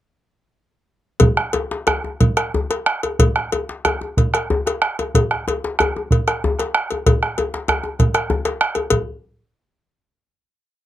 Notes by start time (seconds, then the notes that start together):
1.20 bombo low, cowbell, djembe bass
1.37 bombo rim
1.53 cowbell, djembe tone
1.71 djembe slap
1.87 bombo rim, cowbell, djembe bass
2.04 djembe tone
2.21 bombo low, cowbell
2.37 bombo rim, cowbell, djembe slap
2.54 djembe tone, djembe bass
2.70 bombo rim, cowbell, djembe slap
2.86 bombo rim
3.03 cowbell, djembe tone
3.19 bombo low, cowbell, djembe bass
3.36 bombo rim
3.52 cowbell, djembe tone
3.69 djembe slap
3.85 bombo rim, cowbell, djembe bass
4.01 djembe tone
4.17 bombo low, cowbell
4.34 bombo rim, cowbell, djembe slap
4.50 djembe tone, djembe bass
4.66 bombo rim, cowbell, djembe slap
4.82 bombo rim
4.99 cowbell, djembe tone
5.15 bombo low, cowbell, djembe bass
5.31 bombo rim
5.48 cowbell, djembe tone
5.64 djembe slap
5.79 bombo rim, cowbell, djembe bass
5.96 djembe tone
6.11 bombo low, cowbell
6.28 bombo rim, cowbell, djembe slap
6.44 djembe tone, djembe bass
6.59 bombo rim, cowbell, djembe slap
6.75 bombo rim
6.91 cowbell, djembe tone
7.06 bombo low, cowbell, djembe bass
7.23 bombo rim, djembe slap
7.38 cowbell, djembe tone
7.54 bombo rim, djembe slap
7.68 bombo rim, cowbell, djembe slap, djembe bass
7.84 bombo rim, djembe tone
7.99 bombo rim, bombo low, cowbell, djembe slap
8.14 bombo rim, cowbell
8.30 bombo rim, djembe slap, djembe tone, djembe bass
8.45 bombo rim, cowbell, djembe slap
8.61 bombo rim
8.75 cowbell, djembe tone
8.90 bombo low, cowbell, djembe bass